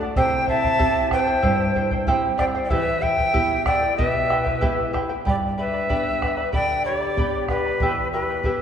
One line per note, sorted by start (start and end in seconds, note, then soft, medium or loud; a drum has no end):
0.01 0.17 D5 soft
0.01 0.17 F#5 soft
0.16 0.78 C3 medium
0.16 0.47 E4 medium
0.16 0.48 G4 medium
0.16 0.46 C5 medium
0.16 0.47 C5 medium
0.16 0.46 E5 medium
0.16 0.46 G5 medium
0.16 0.48 G5 medium
0.16 bombo low medium
0.48 0.64 E4 medium
0.48 0.64 C5 medium
0.48 0.64 E5 medium
0.48 1.08 E5 medium
0.48 0.63 G5 medium
0.48 1.08 A5 loud
0.48 bombo low soft
0.64 0.78 E4 soft
0.64 0.78 C5 soft
0.64 0.78 G5 soft
0.64 bombo low medium
0.79 1.31 C4 medium
0.79 1.10 E4 medium
0.79 1.31 E4 soft
0.79 1.11 G4 medium
0.79 1.31 G4 medium
0.79 1.11 C5 medium
0.79 1.10 E5 medium
0.79 1.12 G5 medium
0.79 bombo low medium
1.11 1.27 E4 medium
1.11 1.27 C5 medium
1.11 2.04 C5 medium
1.11 1.27 E5 medium
1.11 1.26 G5 medium
1.11 2.04 G5 medium
1.11 bombo rim medium
1.11 bombo low medium
1.27 1.41 E4 soft
1.27 1.42 C5 soft
1.27 1.42 G5 medium
1.42 2.05 G2 medium
1.42 1.75 E4 medium
1.42 1.75 G4 medium
1.42 1.75 C5 medium
1.42 1.74 E5 medium
1.42 1.75 G5 medium
1.42 bombo low medium
1.75 1.92 E4 medium
1.75 1.91 C5 medium
1.75 1.91 E5 medium
1.75 1.90 G5 medium
1.75 bombo low soft
1.91 2.07 E4 soft
1.91 2.07 C5 medium
1.91 2.07 G5 medium
1.91 bombo low medium
2.07 2.58 C4 soft
2.07 2.58 E4 soft
2.07 2.38 E4 medium
2.07 2.39 G4 medium
2.07 2.58 G4 soft
2.07 2.38 C5 loud
2.07 2.38 E5 medium
2.07 2.39 G5 loud
2.07 bombo low medium
2.38 2.55 E4 medium
2.38 2.54 C5 medium
2.38 2.44 D5 medium
2.38 2.55 E5 medium
2.38 2.45 G5 medium
2.38 2.53 G5 medium
2.38 bombo rim medium
2.38 bombo low medium
2.55 2.69 E4 soft
2.55 2.71 C5 medium
2.55 2.70 G5 medium
2.63 2.72 D5 medium
2.63 2.73 G5 medium
2.70 3.33 E3 medium
2.70 3.01 E4 medium
2.70 3.02 G4 medium
2.70 3.03 B4 medium
2.70 3.01 B4 medium
2.70 3.00 E5 medium
2.70 3.04 E5 loud
2.70 3.01 G5 medium
2.70 bombo low medium
3.01 3.18 E4 medium
3.01 3.17 B4 medium
3.01 3.18 E5 medium
3.01 3.65 E5 medium
3.01 3.16 G5 medium
3.01 3.65 G5 loud
3.01 bombo low medium
3.18 3.33 E4 soft
3.18 3.33 B4 soft
3.18 3.33 G5 soft
3.18 bombo low medium
3.33 3.85 B3 soft
3.33 3.65 E4 medium
3.33 3.85 E4 soft
3.33 3.66 G4 medium
3.33 3.86 G4 medium
3.33 3.65 B4 medium
3.33 3.65 E5 medium
3.33 3.66 G5 medium
3.33 bombo low medium
3.66 3.82 E4 medium
3.66 3.81 B4 medium
3.66 3.96 D5 medium
3.66 3.82 E5 medium
3.66 3.96 G5 medium
3.66 3.80 G5 medium
3.66 bombo rim medium
3.66 bombo low medium
3.82 3.97 E4 soft
3.82 3.98 B4 soft
3.82 3.97 G5 soft
3.97 4.60 B2 medium
3.97 4.29 E4 medium
3.97 4.30 G4 medium
3.97 4.89 B4 medium
3.97 4.29 B4 medium
3.97 4.89 E5 medium
3.97 4.28 E5 medium
3.97 4.30 G5 medium
3.97 bombo low medium
4.29 4.45 E4 medium
4.29 4.44 B4 medium
4.29 4.46 E5 medium
4.29 4.43 G5 medium
4.29 bombo rim soft
4.44 4.61 E4 soft
4.44 4.61 B4 medium
4.44 4.61 G5 soft
4.44 bombo low medium
4.61 5.13 B3 soft
4.61 4.92 E4 medium
4.61 5.13 E4 soft
4.61 4.93 G4 medium
4.61 5.13 G4 medium
4.61 4.93 B4 medium
4.61 4.92 E5 medium
4.61 4.93 G5 medium
4.61 bombo low medium
4.93 5.10 E4 medium
4.93 5.09 B4 medium
4.93 5.09 E5 medium
4.93 5.08 G5 medium
4.93 bombo rim soft
4.93 bombo low soft
5.09 5.26 E4 medium
5.09 5.25 B4 medium
5.09 5.25 G5 medium
5.25 5.87 G2 medium
5.25 5.58 G4 medium
5.25 5.35 G4 medium
5.25 5.57 B4 medium
5.25 5.58 D5 medium
5.25 5.36 D5 medium
5.25 5.57 G5 medium
5.25 5.58 B5 medium
5.25 bombo low medium
5.58 5.73 B4 medium
5.58 6.50 B4 medium
5.58 5.73 D5 medium
5.58 6.49 E5 medium
5.58 5.74 G5 soft
5.58 5.72 B5 medium
5.73 5.88 B4 soft
5.73 5.89 D5 soft
5.73 5.89 B5 soft
5.89 6.41 B3 soft
5.89 6.40 D4 soft
5.89 6.21 G4 medium
5.89 6.41 G4 soft
5.89 6.21 B4 medium
5.89 6.22 D5 medium
5.89 6.20 G5 medium
5.89 6.21 B5 medium
5.89 bombo low medium
6.22 6.37 B4 medium
6.22 6.36 D5 medium
6.22 6.37 G5 soft
6.22 6.36 B5 medium
6.22 bombo rim medium
6.22 bombo low medium
6.37 6.52 B4 soft
6.37 6.52 D5 soft
6.37 6.52 B5 soft
6.52 7.15 D3 medium
6.52 6.85 G4 medium
6.52 6.83 B4 medium
6.52 6.83 D5 medium
6.52 6.84 D5 medium
6.52 6.83 G5 medium
6.52 6.83 G5 loud
6.52 6.84 B5 medium
6.52 bombo low medium
6.84 7.46 G4 medium
6.84 7.01 B4 medium
6.84 7.00 D5 medium
6.84 7.45 D5 medium
6.84 7.00 G5 medium
6.84 7.00 B5 medium
7.01 7.17 B4 soft
7.01 7.17 D5 soft
7.01 7.17 B5 soft
7.17 7.68 B3 soft
7.17 7.68 D4 soft
7.17 7.68 G4 soft
7.17 7.49 G4 medium
7.17 7.49 B4 medium
7.17 7.49 D5 medium
7.17 7.48 G5 medium
7.17 7.50 B5 medium
7.17 bombo low medium
7.49 8.08 G4 medium
7.49 8.08 B4 medium
7.49 7.65 B4 medium
7.49 7.65 D5 medium
7.49 7.65 G5 medium
7.49 7.65 B5 medium
7.49 bombo rim medium
7.49 bombo low medium
7.66 7.82 B4 soft
7.66 7.82 D5 soft
7.66 7.81 B5 medium
7.80 8.42 E2 medium
7.80 8.12 E4 medium
7.80 8.13 G4 medium
7.80 8.13 B4 medium
7.80 8.12 E5 medium
7.80 8.13 G5 medium
7.80 bombo low medium
8.12 8.29 E4 medium
8.12 8.62 G4 medium
8.12 8.62 B4 medium
8.12 8.29 B4 medium
8.12 8.29 E5 medium
8.12 8.28 G5 medium
8.30 8.45 E4 soft
8.30 8.44 B4 soft
8.30 8.45 G5 soft
8.43 8.62 B3 soft
8.43 8.62 E4 soft
8.43 8.62 E4 medium
8.43 8.62 G4 soft
8.43 8.62 G4 medium
8.43 8.62 B4 medium
8.43 8.62 E5 medium
8.43 8.62 G5 medium
8.43 bombo low medium